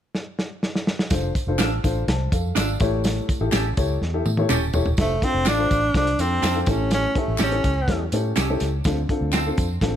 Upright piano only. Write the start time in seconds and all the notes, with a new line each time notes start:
1.11 D4 F4 A4 C5
1.48 D4 F4 A4 C5
1.83 D4 F4 A4 C5
2.09 C5 A5
2.32 A4 F5
2.57 F4 D5
2.80 A2 E4 G4 A4 C#5
3.41 E4 G4 A4 E5
3.77 E4 G4 A4 C#5
4.14 E4 G4 A4 E5
4.38 E4 G4 A4 C#5
4.74 E4 G4 A4 C#5
4.99 D4 F4 A4 C5
5.23 D4 F4 A4 C5
5.58 D4 F4 A4 C5
5.95 D4 F4 A4 C5
6.19 D4 F4 A4 C5
6.56 D4 F4 A4 C5
6.67 A2 C#4 E4 G4 A4
7.15 C#4 E4 G4 A4
7.51 C#4 E4 G4 A4
7.89 C#4 E4 G4 A4
8.13 C#4 E4 G4 A4
8.50 C#4 E4 G4 A4
8.86 D3 C4 D4 F4 A4
9.10 C4 D4 F4 A4
9.46 C4 D4 F4 A4
9.82 C4 D4 F4 A4